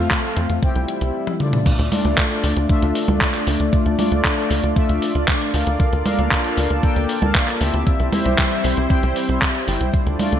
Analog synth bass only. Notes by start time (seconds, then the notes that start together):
0.37 F2
0.50 F2
0.76 C2
1.01 C2
1.79 D2
2.05 D2
2.44 D2
2.57 D2
2.82 D2
3.08 D2
3.47 D2
3.60 D2
3.86 D2
4.12 D2
4.50 D2
4.63 D2
4.89 D2
5.15 D2
5.54 D2
5.67 D2
5.93 D2
6.19 D2
6.57 D2
6.70 D2
6.96 D2
7.22 D2
7.61 D2
7.74 D2
8.00 C2
8.26 C2
8.64 C2
8.77 C2
9.03 C2
9.29 C2
9.68 G1
9.81 C2
10.06 D2
10.32 D2